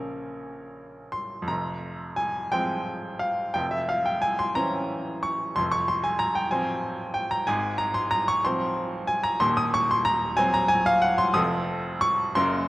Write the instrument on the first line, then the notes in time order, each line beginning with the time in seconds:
grand piano
Already playing: A#1 C#3 F3 A#3 C#4 A#4
1.12 C6
1.42 F2
1.48 F1 A#5
2.16 G#5
2.52 F3 G#3 C4 G5
3.19 F5
3.54 F1 F2 G5
3.71 E5
3.89 F5
4.06 G5
4.22 G#5
4.39 C6
4.55 E3 C#4 C5 A#5
5.23 C#6
5.56 F1 F2 C6
5.72 C#6
5.88 C6
6.04 G#5
6.19 A#5
6.35 G5
6.51 F3 C4 C5 G#5
7.14 G5
7.31 A#5
7.47 G#1 G#2 G#5
7.78 A#5
7.94 C6
8.11 A#5
8.28 C#6
8.44 F3 C4 C5 C6
9.07 G#5
9.23 A#5
9.40 D#1 D#2 C6
9.57 D#6
9.74 C#6
9.91 C6
10.05 A#5
10.37 F#3 C4 C5 G#5
10.54 A#5
10.68 G#5
10.86 F5
11.02 F#5
11.18 C6
11.34 F1 F2 F3 C4 A4 D#6
12.01 C#6
12.35 F#1 F#2 C#3 A#3 A#4 C6